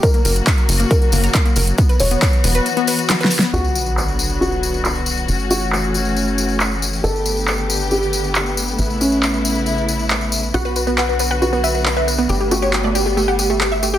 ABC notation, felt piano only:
X:1
M:4/4
L:1/8
Q:1/4=137
K:Bm
V:1 name="Felt piano"
^A4 A2 z2 | z c6- c | F4 F2 z2 | z F6- F |
A4 G2 z2 | z C6- C | F4 F2 z2 | z F6- F |]